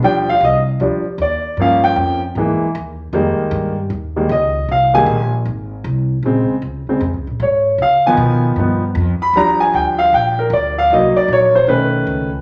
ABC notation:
X:1
M:4/4
L:1/8
Q:"Swing" 1/4=154
K:Fm
V:1 name="Upright piano"
g f e z3 =d2 | f g2 z4 z | z6 e2 | f a2 z4 z |
z6 d2 | f a2 z4 _c' | b a g f g B =d f | e =d _d c =B3 z |]
V:2 name="Upright piano" clef=bass
[F,G,=D] z3 [F,G,D] z3 | [F,B,D]3 z [=E,^G,^A,] z3 | [E,G,A,B,]3 z2 [E,G,A,B,] z2 | z [E,G,A,B,] z6 |
[D,A,C] z2 [D,A,C] z4 | z [E,F,_C]3 [E,F,C] z3 | [F,G,=D]8 | [_G,B,E]3 z [^D,=A,^C]3 z |]
V:3 name="Upright bass" clef=bass
E,,2 C,,2 =D,, z E,,2 | G,,2 F,,2 ^G,, z ^D,,2 | F,, z G,,2 E,,2 D,,2 | C,,2 B,,,2 A,,,2 C,,2 |
B,,, z D,, z (3F,, D,, B,,, A,,2 | D,2 _C,2 G,,2 F,, z | E,,2 =D,,2 B,,,2 D,,2 | C,, z B,,,2 =B,,,2 ^C,,2 |]